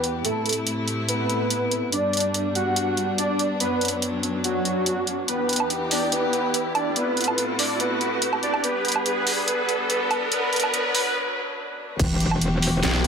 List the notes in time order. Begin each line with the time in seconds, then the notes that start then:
Already playing: E2 E3 B3 G4 B4, riser
0.04 closed hi-hat
0.25 A2 C3 A3 E4 A4, closed hi-hat
0.46 closed hi-hat
0.49 closed hi-hat
0.53 closed hi-hat
0.67 closed hi-hat
0.88 closed hi-hat
1.08 B3 B4, closed hi-hat
1.29 closed hi-hat
1.50 closed hi-hat
1.71 closed hi-hat
1.92 G2 G3 B3 D4 D5, closed hi-hat
2.13 closed hi-hat
2.17 closed hi-hat
2.20 closed hi-hat
2.34 closed hi-hat
2.55 F#4 F#5, closed hi-hat
2.76 closed hi-hat
2.97 closed hi-hat
3.18 D4 D5, closed hi-hat
3.39 closed hi-hat
3.60 F#2 F#3 B3 B4, closed hi-hat
3.81 closed hi-hat
3.85 closed hi-hat
3.88 closed hi-hat
4.02 closed hi-hat
4.23 closed hi-hat
4.44 F#3 F#4, closed hi-hat
4.65 closed hi-hat
4.86 closed hi-hat
5.07 closed hi-hat
5.28 E2 E3 B3 G4 B4, closed hi-hat
5.49 closed hi-hat
5.53 closed hi-hat
5.56 closed hi-hat, low woodblock
5.70 closed hi-hat
5.91 D4 D5, open hi-hat
6.12 B3 B4, closed hi-hat
6.33 closed hi-hat
6.54 closed hi-hat
6.75 D4 D5, closed hi-hat, low woodblock
6.96 A2 C3 A3 B3 E4 B4, closed hi-hat
7.17 closed hi-hat
7.21 closed hi-hat
7.24 closed hi-hat, low woodblock
7.38 closed hi-hat
7.59 D4 D5, open hi-hat
7.80 B3 B4, closed hi-hat
8.01 closed hi-hat
8.22 closed hi-hat
8.33 low woodblock
8.43 D4 D5, closed hi-hat
8.54 low woodblock
8.64 G2 G3 B3 D4 B4, closed hi-hat
8.85 closed hi-hat
8.88 closed hi-hat
8.92 closed hi-hat, low woodblock
9.06 B3 B4, closed hi-hat
9.27 open hi-hat
9.48 B3 B4, closed hi-hat
9.69 closed hi-hat
9.90 B3 B4, closed hi-hat
10.11 closed hi-hat, low woodblock
10.32 F#2 F#3 B3 B4, closed hi-hat
10.53 B3 B4, closed hi-hat
10.56 closed hi-hat
10.60 closed hi-hat, low woodblock
10.74 B3 B4, closed hi-hat
10.95 B3 B4, open hi-hat
11.99 E1 E3 B3 F#4 G4, kick, closed hi-hat, crash, sub drop
12.20 closed hi-hat
12.31 low woodblock
12.41 closed hi-hat
12.62 open hi-hat
12.83 B1, snare, clap, closed hi-hat